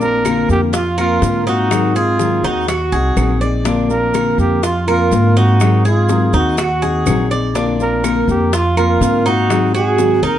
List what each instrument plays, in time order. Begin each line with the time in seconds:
Already playing: upright bass A#1, cuban tres D4
0.01 nylon-string guitar A#3 C4 F4, trumpet A#4, high bongo, maracas
0.25 nylon-string guitar D3 A#3 C4 F4, cuban tres A#4, high bongo, claves, maracas
0.49 upright bass F2, trumpet G4, high bongo, maracas
0.73 cuban tres F4, trumpet F4, muted nylon-string guitar stroke, high bongo, maracas
0.97 nylon-string guitar A#3 C4 F4, trumpet F4, cuban tres A#4, high bongo, claves, maracas
1.22 upright bass G#2, nylon-string guitar D3 A#3 C4 F4, high bongo, low bongo, maracas
1.46 nylon-string guitar A#3 C4 F4, cuban tres D#4, trumpet F#4, maracas
1.70 nylon-string guitar D#3 F#3 C4 D#4 G#4, high bongo, claves, maracas
1.95 nylon-string guitar C4 D#4 G#4, trumpet F4, cuban tres G#4, high bongo, maracas
2.19 nylon-string guitar D#3 F#3 C4 D#4 G#4, high bongo, maracas
2.43 upright bass D#2, cuban tres D#4, trumpet F#4, high bongo, maracas
2.68 cuban tres F#4, trumpet F#4, muted nylon-string guitar stroke, high bongo, claves, maracas
2.92 upright bass C2, nylon-string guitar C4 D#4 G#4, cuban tres G#4, high bongo, maracas
3.16 upright bass A#1, nylon-string guitar D#3 F#3 C4 D#4 G#4, high bongo, low bongo, claves, maracas
3.41 nylon-string guitar C4 D#4 G#4, cuban tres D5, maracas
3.65 nylon-string guitar D3 A#3 C4 F4, cuban tres D4, high bongo, maracas
3.89 nylon-string guitar A#3 C4 F4, trumpet A#4, high bongo, maracas
4.13 nylon-string guitar D3 A#3 C4 F4, cuban tres A#4, high bongo, claves, maracas
4.38 upright bass F2, trumpet G4, high bongo, maracas
4.63 cuban tres F4, trumpet F4, muted nylon-string guitar stroke, high bongo, maracas
4.87 nylon-string guitar A#3 C4 F4, trumpet F4, cuban tres A#4, high bongo, claves, maracas
5.11 upright bass G#2, nylon-string guitar D3 A#3 C4 F4, high bongo, low bongo, maracas
5.36 nylon-string guitar A#3 C4 F4, cuban tres D#4, trumpet F#4, maracas
5.60 nylon-string guitar D#3 F#3 C4 D#4 G#4, high bongo, claves, maracas
5.84 nylon-string guitar C4 D#4 G#4, trumpet F4, cuban tres G#4, high bongo, maracas
6.09 nylon-string guitar D#3 F#3 C4 D#4 G#4, high bongo, maracas
6.33 upright bass D#2, cuban tres D#4, trumpet F#4, high bongo, maracas
6.58 cuban tres F#4, trumpet F#4, muted nylon-string guitar stroke, high bongo, claves, maracas
6.82 nylon-string guitar C4 D#4 G#4, cuban tres G#4, high bongo, maracas
7.06 upright bass A#1, nylon-string guitar D#3 F#3 C4 D#4 G#4, high bongo, low bongo, claves, maracas
7.30 nylon-string guitar C4 D#4 G#4, cuban tres D5, maracas
7.55 nylon-string guitar D3 A#3 C4 F4, cuban tres D4, high bongo, maracas
7.79 nylon-string guitar A#3 C4 F4, trumpet A#4, high bongo, maracas
8.04 nylon-string guitar D3 A#3 C4 F4, cuban tres A#4, high bongo, claves, maracas
8.28 upright bass F2, trumpet G4, high bongo, maracas
8.53 cuban tres F4, trumpet F4, muted nylon-string guitar stroke, high bongo, maracas
8.77 nylon-string guitar A#3 C4 F4, trumpet F4, cuban tres A#4, high bongo, claves, maracas
9.00 upright bass G#2, nylon-string guitar D3 A#3 C4 F4, high bongo, low bongo, maracas
9.25 nylon-string guitar A#3 C4 F4, cuban tres D#4, trumpet F#4, maracas
9.50 nylon-string guitar D#3 F#3 C4 D#4 G#4, high bongo, claves, maracas
9.74 nylon-string guitar C4 D#4 G#4, cuban tres F#4, trumpet G#4, high bongo, maracas
9.98 nylon-string guitar D#3 F#3 C4 D#4 G#4, high bongo, maracas
10.22 upright bass D#2, cuban tres D#4, trumpet A#4, high bongo, maracas